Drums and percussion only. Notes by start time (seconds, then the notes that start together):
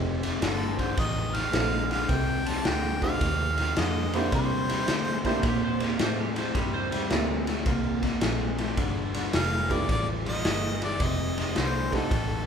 0.23 snare, ride
0.42 snare, ride
0.79 kick, snare, ride
0.97 kick, snare, ride
1.34 snare, ride
1.53 snare, ride
1.91 snare, ride
2.09 kick, snare, ride
2.46 snare, ride
2.65 snare, ride
3.02 kick, snare, ride
3.21 kick, snare, ride
3.58 snare, ride
3.76 snare, ride
4.13 snare, ride
4.32 kick, snare, ride
4.69 snare, ride
4.88 snare, ride
5.25 kick, snare, ride
5.43 kick, snare, ride
5.80 snare, ride
5.99 snare, ride
6.36 snare, ride
6.55 kick, snare, ride
6.92 snare, ride
7.10 snare, ride
7.47 snare, ride
7.66 kick, snare, ride
8.03 kick, snare, ride
8.21 snare, ride
8.58 snare, ride
8.77 kick, snare, ride
9.14 snare, ride
9.33 snare, ride
9.70 kick, snare, ride
9.89 kick, snare, ride
10.26 snare, ride
10.45 snare, ride
10.82 snare, ride
11.00 kick, snare, ride
11.38 snare, ride
11.56 snare, ride
11.92 kick, snare, ride
12.11 kick, snare, ride